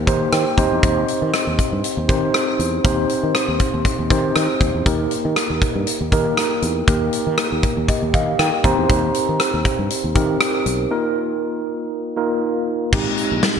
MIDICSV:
0, 0, Header, 1, 4, 480
1, 0, Start_track
1, 0, Key_signature, -3, "major"
1, 0, Tempo, 504202
1, 788, Time_signature, 4, 2, 24, 8
1, 12946, End_track
2, 0, Start_track
2, 0, Title_t, "Tine electric piano"
2, 0, Program_c, 0, 4
2, 0, Control_c, 0, 64, 127
2, 0, Note_on_c, 0, 58, 77
2, 0, Note_on_c, 0, 63, 69
2, 0, Note_on_c, 0, 67, 70
2, 0, Note_on_c, 0, 70, 83
2, 0, Note_on_c, 0, 72, 81
2, 60, Note_off_c, 0, 58, 0
2, 60, Note_on_c, 0, 58, 74
2, 65, Note_off_c, 0, 63, 0
2, 65, Note_on_c, 0, 63, 71
2, 68, Note_off_c, 0, 67, 0
2, 68, Note_on_c, 0, 67, 70
2, 72, Note_off_c, 0, 72, 0
2, 72, Note_on_c, 0, 72, 88
2, 309, Note_on_c, 0, 79, 62
2, 532, Note_off_c, 0, 79, 0
2, 535, Note_off_c, 0, 63, 0
2, 541, Note_off_c, 0, 67, 0
2, 544, Note_off_c, 0, 58, 0
2, 544, Note_off_c, 0, 72, 0
2, 545, Note_on_c, 0, 60, 78
2, 546, Note_on_c, 0, 63, 79
2, 550, Note_on_c, 0, 75, 71
2, 552, Note_on_c, 0, 67, 75
2, 555, Note_on_c, 0, 72, 92
2, 559, Control_c, 0, 64, 0
2, 565, Note_off_c, 0, 70, 0
2, 742, Control_c, 0, 64, 127
2, 772, Note_off_c, 0, 75, 0
2, 1319, Note_off_c, 0, 60, 0
2, 1320, Note_off_c, 0, 63, 0
2, 1323, Note_off_c, 0, 67, 0
2, 1325, Note_off_c, 0, 72, 0
2, 1980, Note_on_c, 0, 60, 74
2, 1984, Note_on_c, 0, 63, 71
2, 1988, Note_on_c, 0, 67, 68
2, 1992, Note_on_c, 0, 72, 82
2, 2515, Note_off_c, 0, 60, 0
2, 2517, Note_off_c, 0, 63, 0
2, 2519, Note_off_c, 0, 67, 0
2, 2521, Note_off_c, 0, 72, 0
2, 2703, Note_on_c, 0, 60, 73
2, 2706, Note_on_c, 0, 63, 69
2, 2711, Note_on_c, 0, 67, 70
2, 2714, Note_on_c, 0, 72, 85
2, 3409, Note_off_c, 0, 60, 0
2, 3411, Note_off_c, 0, 63, 0
2, 3413, Note_off_c, 0, 67, 0
2, 3415, Note_off_c, 0, 72, 0
2, 3902, Note_on_c, 0, 60, 71
2, 3906, Note_on_c, 0, 63, 67
2, 3909, Note_on_c, 0, 67, 68
2, 3912, Note_on_c, 0, 72, 87
2, 4436, Note_off_c, 0, 60, 0
2, 4438, Note_off_c, 0, 63, 0
2, 4439, Note_off_c, 0, 67, 0
2, 4441, Note_off_c, 0, 72, 0
2, 4619, Note_on_c, 0, 58, 78
2, 4623, Note_on_c, 0, 63, 70
2, 4627, Note_on_c, 0, 67, 69
2, 4631, Note_on_c, 0, 70, 83
2, 4639, Control_c, 0, 64, 0
2, 4791, Control_c, 0, 64, 127
2, 5327, Note_off_c, 0, 58, 0
2, 5329, Note_off_c, 0, 63, 0
2, 5331, Note_off_c, 0, 67, 0
2, 5333, Note_off_c, 0, 70, 0
2, 5821, Note_on_c, 0, 58, 76
2, 5823, Note_on_c, 0, 63, 69
2, 5828, Note_on_c, 0, 67, 66
2, 5833, Note_on_c, 0, 70, 83
2, 6355, Note_off_c, 0, 58, 0
2, 6356, Note_off_c, 0, 63, 0
2, 6359, Note_off_c, 0, 67, 0
2, 6361, Note_off_c, 0, 70, 0
2, 6543, Note_on_c, 0, 58, 75
2, 6547, Note_on_c, 0, 63, 67
2, 6550, Note_on_c, 0, 67, 70
2, 6553, Note_on_c, 0, 70, 87
2, 7249, Note_off_c, 0, 58, 0
2, 7251, Note_off_c, 0, 63, 0
2, 7253, Note_off_c, 0, 67, 0
2, 7254, Note_off_c, 0, 70, 0
2, 7508, Note_on_c, 0, 75, 59
2, 7513, Note_on_c, 0, 67, 51
2, 7736, Note_off_c, 0, 75, 0
2, 7739, Note_off_c, 0, 67, 0
2, 7749, Note_on_c, 0, 77, 66
2, 7750, Note_on_c, 0, 75, 64
2, 7972, Note_off_c, 0, 75, 0
2, 7977, Note_off_c, 0, 77, 0
2, 7989, Note_on_c, 0, 79, 64
2, 7993, Note_on_c, 0, 70, 46
2, 8212, Note_off_c, 0, 79, 0
2, 8221, Note_on_c, 0, 60, 87
2, 8225, Note_on_c, 0, 63, 74
2, 8227, Note_on_c, 0, 82, 72
2, 8229, Note_on_c, 0, 67, 75
2, 8233, Note_on_c, 0, 72, 94
2, 8241, Control_c, 0, 64, 0
2, 8424, Control_c, 0, 64, 127
2, 8447, Note_off_c, 0, 70, 0
2, 8451, Note_off_c, 0, 82, 0
2, 8998, Note_off_c, 0, 60, 0
2, 8999, Note_off_c, 0, 63, 0
2, 9001, Note_off_c, 0, 67, 0
2, 9004, Note_off_c, 0, 72, 0
2, 9663, Note_on_c, 0, 60, 78
2, 9664, Note_on_c, 0, 63, 68
2, 9669, Note_on_c, 0, 67, 69
2, 9674, Note_on_c, 0, 70, 88
2, 10196, Note_off_c, 0, 60, 0
2, 10197, Note_off_c, 0, 63, 0
2, 10199, Note_off_c, 0, 67, 0
2, 10202, Note_off_c, 0, 70, 0
2, 10382, Note_on_c, 0, 58, 79
2, 10386, Note_on_c, 0, 63, 71
2, 10389, Note_on_c, 0, 65, 69
2, 10391, Note_on_c, 0, 70, 86
2, 10402, Control_c, 0, 64, 0
2, 10570, Control_c, 0, 64, 127
2, 11089, Note_off_c, 0, 58, 0
2, 11090, Note_off_c, 0, 63, 0
2, 11092, Note_off_c, 0, 65, 0
2, 11093, Note_off_c, 0, 70, 0
2, 11580, Note_on_c, 0, 58, 73
2, 11582, Note_on_c, 0, 63, 71
2, 11586, Note_on_c, 0, 65, 72
2, 11590, Note_on_c, 0, 70, 82
2, 12115, Note_off_c, 0, 58, 0
2, 12116, Note_off_c, 0, 63, 0
2, 12118, Note_off_c, 0, 65, 0
2, 12120, Note_off_c, 0, 70, 0
2, 12302, Note_on_c, 0, 56, 82
2, 12307, Note_on_c, 0, 60, 73
2, 12310, Note_on_c, 0, 63, 73
2, 12312, Note_on_c, 0, 67, 85
2, 12321, Control_c, 0, 64, 0
2, 12468, Control_c, 0, 64, 127
2, 12946, Note_off_c, 0, 56, 0
2, 12946, Note_off_c, 0, 60, 0
2, 12946, Note_off_c, 0, 63, 0
2, 12946, Note_off_c, 0, 67, 0
2, 12946, End_track
3, 0, Start_track
3, 0, Title_t, "Fretless electric bass"
3, 0, Program_c, 1, 35
3, 69, Note_on_c, 1, 51, 83
3, 249, Note_off_c, 1, 51, 0
3, 309, Note_on_c, 1, 51, 96
3, 408, Note_off_c, 1, 51, 0
3, 549, Note_on_c, 1, 39, 79
3, 648, Note_off_c, 1, 39, 0
3, 685, Note_on_c, 1, 40, 78
3, 765, Note_off_c, 1, 40, 0
3, 792, Note_on_c, 1, 39, 92
3, 971, Note_off_c, 1, 39, 0
3, 1161, Note_on_c, 1, 51, 92
3, 1242, Note_off_c, 1, 51, 0
3, 1401, Note_on_c, 1, 39, 77
3, 1482, Note_off_c, 1, 39, 0
3, 1641, Note_on_c, 1, 43, 78
3, 1722, Note_off_c, 1, 43, 0
3, 1877, Note_on_c, 1, 39, 84
3, 1959, Note_off_c, 1, 39, 0
3, 1990, Note_on_c, 1, 51, 89
3, 2169, Note_off_c, 1, 51, 0
3, 2468, Note_on_c, 1, 40, 86
3, 2648, Note_off_c, 1, 40, 0
3, 2708, Note_on_c, 1, 39, 89
3, 2888, Note_off_c, 1, 39, 0
3, 3078, Note_on_c, 1, 51, 85
3, 3160, Note_off_c, 1, 51, 0
3, 3316, Note_on_c, 1, 39, 71
3, 3398, Note_off_c, 1, 39, 0
3, 3558, Note_on_c, 1, 39, 72
3, 3640, Note_off_c, 1, 39, 0
3, 3798, Note_on_c, 1, 39, 84
3, 3880, Note_off_c, 1, 39, 0
3, 3908, Note_on_c, 1, 51, 95
3, 4088, Note_off_c, 1, 51, 0
3, 4149, Note_on_c, 1, 51, 86
3, 4248, Note_off_c, 1, 51, 0
3, 4385, Note_on_c, 1, 39, 75
3, 4485, Note_off_c, 1, 39, 0
3, 4519, Note_on_c, 1, 40, 81
3, 4600, Note_off_c, 1, 40, 0
3, 4626, Note_on_c, 1, 39, 92
3, 4807, Note_off_c, 1, 39, 0
3, 4998, Note_on_c, 1, 51, 85
3, 5080, Note_off_c, 1, 51, 0
3, 5237, Note_on_c, 1, 39, 73
3, 5319, Note_off_c, 1, 39, 0
3, 5478, Note_on_c, 1, 43, 78
3, 5560, Note_off_c, 1, 43, 0
3, 5719, Note_on_c, 1, 39, 81
3, 5800, Note_off_c, 1, 39, 0
3, 5828, Note_on_c, 1, 51, 83
3, 6008, Note_off_c, 1, 51, 0
3, 6306, Note_on_c, 1, 40, 75
3, 6487, Note_off_c, 1, 40, 0
3, 6547, Note_on_c, 1, 39, 86
3, 6727, Note_off_c, 1, 39, 0
3, 6918, Note_on_c, 1, 51, 87
3, 7000, Note_off_c, 1, 51, 0
3, 7162, Note_on_c, 1, 39, 79
3, 7242, Note_off_c, 1, 39, 0
3, 7398, Note_on_c, 1, 39, 74
3, 7480, Note_off_c, 1, 39, 0
3, 7640, Note_on_c, 1, 39, 91
3, 7721, Note_off_c, 1, 39, 0
3, 7749, Note_on_c, 1, 51, 86
3, 7929, Note_off_c, 1, 51, 0
3, 7988, Note_on_c, 1, 51, 94
3, 8087, Note_off_c, 1, 51, 0
3, 8228, Note_on_c, 1, 39, 81
3, 8327, Note_off_c, 1, 39, 0
3, 8358, Note_on_c, 1, 40, 86
3, 8440, Note_off_c, 1, 40, 0
3, 8470, Note_on_c, 1, 39, 99
3, 8649, Note_off_c, 1, 39, 0
3, 8842, Note_on_c, 1, 51, 80
3, 8922, Note_off_c, 1, 51, 0
3, 9080, Note_on_c, 1, 39, 81
3, 9161, Note_off_c, 1, 39, 0
3, 9319, Note_on_c, 1, 43, 86
3, 9400, Note_off_c, 1, 43, 0
3, 9559, Note_on_c, 1, 39, 88
3, 9641, Note_off_c, 1, 39, 0
3, 9669, Note_on_c, 1, 51, 84
3, 9849, Note_off_c, 1, 51, 0
3, 10147, Note_on_c, 1, 35, 86
3, 10327, Note_off_c, 1, 35, 0
3, 12306, Note_on_c, 1, 32, 99
3, 12406, Note_off_c, 1, 32, 0
3, 12677, Note_on_c, 1, 34, 84
3, 12759, Note_off_c, 1, 34, 0
3, 12946, End_track
4, 0, Start_track
4, 0, Title_t, "Drums"
4, 70, Note_on_c, 9, 36, 91
4, 71, Note_on_c, 9, 42, 64
4, 165, Note_off_c, 9, 36, 0
4, 167, Note_off_c, 9, 42, 0
4, 310, Note_on_c, 9, 37, 97
4, 313, Note_on_c, 9, 42, 69
4, 405, Note_off_c, 9, 37, 0
4, 408, Note_off_c, 9, 42, 0
4, 549, Note_on_c, 9, 36, 84
4, 553, Note_on_c, 9, 42, 63
4, 644, Note_off_c, 9, 36, 0
4, 648, Note_off_c, 9, 42, 0
4, 791, Note_on_c, 9, 36, 108
4, 791, Note_on_c, 9, 42, 81
4, 887, Note_off_c, 9, 36, 0
4, 887, Note_off_c, 9, 42, 0
4, 1031, Note_on_c, 9, 42, 71
4, 1126, Note_off_c, 9, 42, 0
4, 1272, Note_on_c, 9, 37, 95
4, 1272, Note_on_c, 9, 42, 73
4, 1367, Note_off_c, 9, 37, 0
4, 1367, Note_off_c, 9, 42, 0
4, 1511, Note_on_c, 9, 36, 80
4, 1513, Note_on_c, 9, 42, 68
4, 1607, Note_off_c, 9, 36, 0
4, 1609, Note_off_c, 9, 42, 0
4, 1751, Note_on_c, 9, 42, 83
4, 1846, Note_off_c, 9, 42, 0
4, 1990, Note_on_c, 9, 36, 87
4, 1995, Note_on_c, 9, 42, 66
4, 2085, Note_off_c, 9, 36, 0
4, 2090, Note_off_c, 9, 42, 0
4, 2231, Note_on_c, 9, 37, 97
4, 2233, Note_on_c, 9, 42, 70
4, 2326, Note_off_c, 9, 37, 0
4, 2329, Note_off_c, 9, 42, 0
4, 2471, Note_on_c, 9, 42, 62
4, 2566, Note_off_c, 9, 42, 0
4, 2709, Note_on_c, 9, 36, 106
4, 2710, Note_on_c, 9, 42, 86
4, 2805, Note_off_c, 9, 36, 0
4, 2805, Note_off_c, 9, 42, 0
4, 2946, Note_on_c, 9, 42, 76
4, 3042, Note_off_c, 9, 42, 0
4, 3187, Note_on_c, 9, 37, 95
4, 3187, Note_on_c, 9, 42, 73
4, 3282, Note_off_c, 9, 37, 0
4, 3282, Note_off_c, 9, 42, 0
4, 3423, Note_on_c, 9, 42, 68
4, 3427, Note_on_c, 9, 36, 81
4, 3518, Note_off_c, 9, 42, 0
4, 3522, Note_off_c, 9, 36, 0
4, 3663, Note_on_c, 9, 42, 80
4, 3665, Note_on_c, 9, 36, 85
4, 3758, Note_off_c, 9, 42, 0
4, 3760, Note_off_c, 9, 36, 0
4, 3908, Note_on_c, 9, 36, 90
4, 3909, Note_on_c, 9, 42, 68
4, 4003, Note_off_c, 9, 36, 0
4, 4004, Note_off_c, 9, 42, 0
4, 4147, Note_on_c, 9, 37, 97
4, 4150, Note_on_c, 9, 42, 74
4, 4242, Note_off_c, 9, 37, 0
4, 4245, Note_off_c, 9, 42, 0
4, 4385, Note_on_c, 9, 42, 63
4, 4386, Note_on_c, 9, 36, 81
4, 4481, Note_off_c, 9, 36, 0
4, 4481, Note_off_c, 9, 42, 0
4, 4626, Note_on_c, 9, 42, 86
4, 4627, Note_on_c, 9, 36, 105
4, 4721, Note_off_c, 9, 42, 0
4, 4722, Note_off_c, 9, 36, 0
4, 4864, Note_on_c, 9, 42, 74
4, 4959, Note_off_c, 9, 42, 0
4, 5106, Note_on_c, 9, 37, 90
4, 5106, Note_on_c, 9, 42, 73
4, 5201, Note_off_c, 9, 37, 0
4, 5201, Note_off_c, 9, 42, 0
4, 5347, Note_on_c, 9, 36, 81
4, 5347, Note_on_c, 9, 42, 67
4, 5442, Note_off_c, 9, 36, 0
4, 5442, Note_off_c, 9, 42, 0
4, 5587, Note_on_c, 9, 42, 85
4, 5682, Note_off_c, 9, 42, 0
4, 5827, Note_on_c, 9, 36, 86
4, 5832, Note_on_c, 9, 42, 69
4, 5923, Note_off_c, 9, 36, 0
4, 5927, Note_off_c, 9, 42, 0
4, 6068, Note_on_c, 9, 37, 97
4, 6071, Note_on_c, 9, 42, 75
4, 6164, Note_off_c, 9, 37, 0
4, 6166, Note_off_c, 9, 42, 0
4, 6306, Note_on_c, 9, 42, 65
4, 6401, Note_off_c, 9, 42, 0
4, 6546, Note_on_c, 9, 42, 84
4, 6547, Note_on_c, 9, 36, 105
4, 6641, Note_off_c, 9, 42, 0
4, 6642, Note_off_c, 9, 36, 0
4, 6785, Note_on_c, 9, 42, 76
4, 6880, Note_off_c, 9, 42, 0
4, 7023, Note_on_c, 9, 37, 98
4, 7023, Note_on_c, 9, 42, 71
4, 7118, Note_off_c, 9, 37, 0
4, 7118, Note_off_c, 9, 42, 0
4, 7264, Note_on_c, 9, 42, 71
4, 7267, Note_on_c, 9, 36, 82
4, 7359, Note_off_c, 9, 42, 0
4, 7362, Note_off_c, 9, 36, 0
4, 7506, Note_on_c, 9, 36, 88
4, 7507, Note_on_c, 9, 42, 82
4, 7602, Note_off_c, 9, 36, 0
4, 7602, Note_off_c, 9, 42, 0
4, 7749, Note_on_c, 9, 36, 90
4, 7751, Note_on_c, 9, 42, 71
4, 7844, Note_off_c, 9, 36, 0
4, 7847, Note_off_c, 9, 42, 0
4, 7990, Note_on_c, 9, 37, 99
4, 7993, Note_on_c, 9, 42, 78
4, 8085, Note_off_c, 9, 37, 0
4, 8088, Note_off_c, 9, 42, 0
4, 8227, Note_on_c, 9, 36, 85
4, 8231, Note_on_c, 9, 42, 63
4, 8322, Note_off_c, 9, 36, 0
4, 8326, Note_off_c, 9, 42, 0
4, 8469, Note_on_c, 9, 36, 105
4, 8469, Note_on_c, 9, 42, 88
4, 8564, Note_off_c, 9, 36, 0
4, 8565, Note_off_c, 9, 42, 0
4, 8706, Note_on_c, 9, 42, 78
4, 8801, Note_off_c, 9, 42, 0
4, 8947, Note_on_c, 9, 37, 97
4, 8947, Note_on_c, 9, 42, 71
4, 9042, Note_off_c, 9, 37, 0
4, 9042, Note_off_c, 9, 42, 0
4, 9185, Note_on_c, 9, 42, 65
4, 9188, Note_on_c, 9, 36, 83
4, 9280, Note_off_c, 9, 42, 0
4, 9283, Note_off_c, 9, 36, 0
4, 9429, Note_on_c, 9, 42, 85
4, 9524, Note_off_c, 9, 42, 0
4, 9668, Note_on_c, 9, 36, 92
4, 9670, Note_on_c, 9, 42, 66
4, 9763, Note_off_c, 9, 36, 0
4, 9765, Note_off_c, 9, 42, 0
4, 9906, Note_on_c, 9, 37, 101
4, 9909, Note_on_c, 9, 42, 73
4, 10001, Note_off_c, 9, 37, 0
4, 10004, Note_off_c, 9, 42, 0
4, 10148, Note_on_c, 9, 42, 64
4, 10243, Note_off_c, 9, 42, 0
4, 12306, Note_on_c, 9, 49, 93
4, 12307, Note_on_c, 9, 36, 120
4, 12401, Note_off_c, 9, 49, 0
4, 12402, Note_off_c, 9, 36, 0
4, 12543, Note_on_c, 9, 42, 79
4, 12638, Note_off_c, 9, 42, 0
4, 12784, Note_on_c, 9, 38, 107
4, 12784, Note_on_c, 9, 42, 75
4, 12879, Note_off_c, 9, 38, 0
4, 12879, Note_off_c, 9, 42, 0
4, 12946, End_track
0, 0, End_of_file